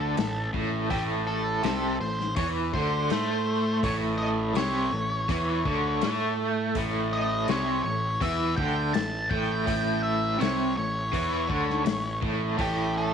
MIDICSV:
0, 0, Header, 1, 5, 480
1, 0, Start_track
1, 0, Key_signature, 3, "major"
1, 0, Tempo, 729927
1, 597, Time_signature, 4, 2, 24, 8
1, 8639, End_track
2, 0, Start_track
2, 0, Title_t, "Lead electric guitar"
2, 0, Program_c, 0, 29
2, 0, Note_on_c, 0, 69, 75
2, 326, Note_off_c, 0, 69, 0
2, 594, Note_on_c, 0, 67, 75
2, 659, Note_off_c, 0, 67, 0
2, 836, Note_on_c, 0, 69, 78
2, 1292, Note_off_c, 0, 69, 0
2, 1320, Note_on_c, 0, 72, 89
2, 1551, Note_off_c, 0, 72, 0
2, 1553, Note_on_c, 0, 73, 91
2, 1619, Note_off_c, 0, 73, 0
2, 1800, Note_on_c, 0, 72, 97
2, 2495, Note_off_c, 0, 72, 0
2, 2525, Note_on_c, 0, 73, 90
2, 2589, Note_off_c, 0, 73, 0
2, 2748, Note_on_c, 0, 75, 88
2, 2814, Note_off_c, 0, 75, 0
2, 2999, Note_on_c, 0, 73, 86
2, 4176, Note_off_c, 0, 73, 0
2, 4689, Note_on_c, 0, 75, 80
2, 4925, Note_off_c, 0, 75, 0
2, 4928, Note_on_c, 0, 73, 82
2, 5144, Note_off_c, 0, 73, 0
2, 5152, Note_on_c, 0, 73, 83
2, 5405, Note_off_c, 0, 73, 0
2, 5406, Note_on_c, 0, 76, 93
2, 5628, Note_off_c, 0, 76, 0
2, 5632, Note_on_c, 0, 79, 94
2, 5875, Note_on_c, 0, 81, 96
2, 5885, Note_off_c, 0, 79, 0
2, 6117, Note_on_c, 0, 79, 100
2, 6126, Note_off_c, 0, 81, 0
2, 6594, Note_off_c, 0, 79, 0
2, 6597, Note_on_c, 0, 76, 70
2, 6841, Note_on_c, 0, 73, 78
2, 6846, Note_off_c, 0, 76, 0
2, 7076, Note_off_c, 0, 73, 0
2, 7083, Note_on_c, 0, 73, 81
2, 8013, Note_off_c, 0, 73, 0
2, 8291, Note_on_c, 0, 67, 83
2, 8507, Note_off_c, 0, 67, 0
2, 8532, Note_on_c, 0, 69, 81
2, 8639, Note_off_c, 0, 69, 0
2, 8639, End_track
3, 0, Start_track
3, 0, Title_t, "Overdriven electric guitar"
3, 0, Program_c, 1, 29
3, 0, Note_on_c, 1, 50, 91
3, 107, Note_off_c, 1, 50, 0
3, 119, Note_on_c, 1, 45, 61
3, 310, Note_off_c, 1, 45, 0
3, 360, Note_on_c, 1, 45, 97
3, 589, Note_off_c, 1, 45, 0
3, 597, Note_on_c, 1, 45, 101
3, 1071, Note_off_c, 1, 45, 0
3, 1078, Note_on_c, 1, 48, 91
3, 1311, Note_off_c, 1, 48, 0
3, 1321, Note_on_c, 1, 45, 58
3, 1512, Note_off_c, 1, 45, 0
3, 1561, Note_on_c, 1, 52, 101
3, 1794, Note_off_c, 1, 52, 0
3, 1810, Note_on_c, 1, 50, 93
3, 2038, Note_off_c, 1, 50, 0
3, 2047, Note_on_c, 1, 57, 97
3, 2517, Note_off_c, 1, 57, 0
3, 2525, Note_on_c, 1, 45, 93
3, 2997, Note_off_c, 1, 45, 0
3, 3003, Note_on_c, 1, 48, 106
3, 3236, Note_off_c, 1, 48, 0
3, 3245, Note_on_c, 1, 45, 68
3, 3436, Note_off_c, 1, 45, 0
3, 3481, Note_on_c, 1, 52, 99
3, 3715, Note_off_c, 1, 52, 0
3, 3724, Note_on_c, 1, 50, 94
3, 3957, Note_off_c, 1, 50, 0
3, 3968, Note_on_c, 1, 57, 98
3, 4439, Note_off_c, 1, 57, 0
3, 4455, Note_on_c, 1, 45, 93
3, 4922, Note_off_c, 1, 45, 0
3, 4927, Note_on_c, 1, 48, 98
3, 5158, Note_off_c, 1, 48, 0
3, 5173, Note_on_c, 1, 45, 62
3, 5360, Note_off_c, 1, 45, 0
3, 5404, Note_on_c, 1, 52, 94
3, 5637, Note_off_c, 1, 52, 0
3, 5650, Note_on_c, 1, 50, 96
3, 5879, Note_off_c, 1, 50, 0
3, 5882, Note_on_c, 1, 45, 70
3, 6075, Note_off_c, 1, 45, 0
3, 6122, Note_on_c, 1, 45, 102
3, 6350, Note_off_c, 1, 45, 0
3, 6358, Note_on_c, 1, 45, 100
3, 6831, Note_off_c, 1, 45, 0
3, 6834, Note_on_c, 1, 48, 94
3, 7070, Note_off_c, 1, 48, 0
3, 7075, Note_on_c, 1, 45, 68
3, 7270, Note_off_c, 1, 45, 0
3, 7318, Note_on_c, 1, 52, 98
3, 7548, Note_off_c, 1, 52, 0
3, 7551, Note_on_c, 1, 50, 91
3, 7787, Note_off_c, 1, 50, 0
3, 7794, Note_on_c, 1, 45, 65
3, 7988, Note_off_c, 1, 45, 0
3, 8040, Note_on_c, 1, 45, 107
3, 8265, Note_off_c, 1, 45, 0
3, 8272, Note_on_c, 1, 45, 99
3, 8639, Note_off_c, 1, 45, 0
3, 8639, End_track
4, 0, Start_track
4, 0, Title_t, "Picked electric bass"
4, 0, Program_c, 2, 34
4, 0, Note_on_c, 2, 38, 80
4, 97, Note_off_c, 2, 38, 0
4, 112, Note_on_c, 2, 33, 71
4, 337, Note_off_c, 2, 33, 0
4, 357, Note_on_c, 2, 33, 84
4, 581, Note_off_c, 2, 33, 0
4, 598, Note_on_c, 2, 33, 94
4, 1052, Note_off_c, 2, 33, 0
4, 1076, Note_on_c, 2, 36, 88
4, 1301, Note_off_c, 2, 36, 0
4, 1324, Note_on_c, 2, 33, 72
4, 1545, Note_off_c, 2, 33, 0
4, 1556, Note_on_c, 2, 40, 85
4, 1781, Note_off_c, 2, 40, 0
4, 1800, Note_on_c, 2, 38, 84
4, 2023, Note_off_c, 2, 38, 0
4, 2046, Note_on_c, 2, 45, 81
4, 2498, Note_off_c, 2, 45, 0
4, 2524, Note_on_c, 2, 33, 93
4, 2977, Note_off_c, 2, 33, 0
4, 2989, Note_on_c, 2, 36, 88
4, 3219, Note_off_c, 2, 36, 0
4, 3238, Note_on_c, 2, 33, 73
4, 3464, Note_off_c, 2, 33, 0
4, 3477, Note_on_c, 2, 40, 79
4, 3703, Note_off_c, 2, 40, 0
4, 3718, Note_on_c, 2, 38, 83
4, 3944, Note_off_c, 2, 38, 0
4, 3971, Note_on_c, 2, 45, 82
4, 4421, Note_off_c, 2, 45, 0
4, 4442, Note_on_c, 2, 33, 89
4, 4897, Note_off_c, 2, 33, 0
4, 4923, Note_on_c, 2, 36, 88
4, 5147, Note_off_c, 2, 36, 0
4, 5159, Note_on_c, 2, 33, 67
4, 5384, Note_off_c, 2, 33, 0
4, 5400, Note_on_c, 2, 40, 82
4, 5625, Note_off_c, 2, 40, 0
4, 5639, Note_on_c, 2, 38, 80
4, 5864, Note_off_c, 2, 38, 0
4, 5890, Note_on_c, 2, 33, 76
4, 6110, Note_off_c, 2, 33, 0
4, 6119, Note_on_c, 2, 33, 88
4, 6344, Note_off_c, 2, 33, 0
4, 6361, Note_on_c, 2, 33, 87
4, 6815, Note_off_c, 2, 33, 0
4, 6846, Note_on_c, 2, 36, 89
4, 7067, Note_off_c, 2, 36, 0
4, 7087, Note_on_c, 2, 33, 69
4, 7307, Note_off_c, 2, 33, 0
4, 7324, Note_on_c, 2, 40, 84
4, 7545, Note_off_c, 2, 40, 0
4, 7562, Note_on_c, 2, 38, 82
4, 7783, Note_off_c, 2, 38, 0
4, 7800, Note_on_c, 2, 33, 70
4, 8022, Note_off_c, 2, 33, 0
4, 8043, Note_on_c, 2, 33, 92
4, 8263, Note_off_c, 2, 33, 0
4, 8279, Note_on_c, 2, 33, 100
4, 8639, Note_off_c, 2, 33, 0
4, 8639, End_track
5, 0, Start_track
5, 0, Title_t, "Drums"
5, 113, Note_on_c, 9, 46, 54
5, 123, Note_on_c, 9, 38, 108
5, 179, Note_off_c, 9, 46, 0
5, 188, Note_off_c, 9, 38, 0
5, 356, Note_on_c, 9, 36, 105
5, 421, Note_off_c, 9, 36, 0
5, 594, Note_on_c, 9, 46, 50
5, 596, Note_on_c, 9, 36, 96
5, 660, Note_off_c, 9, 46, 0
5, 661, Note_off_c, 9, 36, 0
5, 1074, Note_on_c, 9, 46, 51
5, 1083, Note_on_c, 9, 38, 95
5, 1140, Note_off_c, 9, 46, 0
5, 1149, Note_off_c, 9, 38, 0
5, 1447, Note_on_c, 9, 38, 31
5, 1513, Note_off_c, 9, 38, 0
5, 1554, Note_on_c, 9, 46, 59
5, 1557, Note_on_c, 9, 36, 108
5, 1620, Note_off_c, 9, 46, 0
5, 1623, Note_off_c, 9, 36, 0
5, 1799, Note_on_c, 9, 36, 93
5, 1865, Note_off_c, 9, 36, 0
5, 2039, Note_on_c, 9, 46, 54
5, 2048, Note_on_c, 9, 38, 99
5, 2104, Note_off_c, 9, 46, 0
5, 2114, Note_off_c, 9, 38, 0
5, 2520, Note_on_c, 9, 36, 97
5, 2522, Note_on_c, 9, 46, 58
5, 2585, Note_off_c, 9, 36, 0
5, 2588, Note_off_c, 9, 46, 0
5, 2994, Note_on_c, 9, 46, 55
5, 3003, Note_on_c, 9, 38, 98
5, 3060, Note_off_c, 9, 46, 0
5, 3069, Note_off_c, 9, 38, 0
5, 3478, Note_on_c, 9, 36, 107
5, 3480, Note_on_c, 9, 46, 52
5, 3544, Note_off_c, 9, 36, 0
5, 3546, Note_off_c, 9, 46, 0
5, 3718, Note_on_c, 9, 36, 96
5, 3784, Note_off_c, 9, 36, 0
5, 3955, Note_on_c, 9, 46, 51
5, 3964, Note_on_c, 9, 38, 110
5, 4021, Note_off_c, 9, 46, 0
5, 4030, Note_off_c, 9, 38, 0
5, 4439, Note_on_c, 9, 46, 54
5, 4441, Note_on_c, 9, 36, 94
5, 4505, Note_off_c, 9, 46, 0
5, 4506, Note_off_c, 9, 36, 0
5, 4918, Note_on_c, 9, 46, 49
5, 4927, Note_on_c, 9, 38, 109
5, 4984, Note_off_c, 9, 46, 0
5, 4993, Note_off_c, 9, 38, 0
5, 5400, Note_on_c, 9, 36, 100
5, 5404, Note_on_c, 9, 46, 59
5, 5466, Note_off_c, 9, 36, 0
5, 5469, Note_off_c, 9, 46, 0
5, 5640, Note_on_c, 9, 36, 96
5, 5706, Note_off_c, 9, 36, 0
5, 5880, Note_on_c, 9, 46, 52
5, 5889, Note_on_c, 9, 38, 103
5, 5945, Note_off_c, 9, 46, 0
5, 5955, Note_off_c, 9, 38, 0
5, 6120, Note_on_c, 9, 36, 104
5, 6186, Note_off_c, 9, 36, 0
5, 6361, Note_on_c, 9, 36, 108
5, 6364, Note_on_c, 9, 46, 61
5, 6426, Note_off_c, 9, 36, 0
5, 6429, Note_off_c, 9, 46, 0
5, 6846, Note_on_c, 9, 46, 52
5, 6855, Note_on_c, 9, 38, 94
5, 6912, Note_off_c, 9, 46, 0
5, 6921, Note_off_c, 9, 38, 0
5, 7320, Note_on_c, 9, 36, 101
5, 7325, Note_on_c, 9, 46, 53
5, 7386, Note_off_c, 9, 36, 0
5, 7391, Note_off_c, 9, 46, 0
5, 7560, Note_on_c, 9, 36, 95
5, 7626, Note_off_c, 9, 36, 0
5, 7691, Note_on_c, 9, 38, 31
5, 7757, Note_off_c, 9, 38, 0
5, 7797, Note_on_c, 9, 46, 55
5, 7807, Note_on_c, 9, 38, 106
5, 7863, Note_off_c, 9, 46, 0
5, 7872, Note_off_c, 9, 38, 0
5, 8039, Note_on_c, 9, 36, 113
5, 8105, Note_off_c, 9, 36, 0
5, 8277, Note_on_c, 9, 36, 104
5, 8278, Note_on_c, 9, 46, 50
5, 8343, Note_off_c, 9, 36, 0
5, 8344, Note_off_c, 9, 46, 0
5, 8639, End_track
0, 0, End_of_file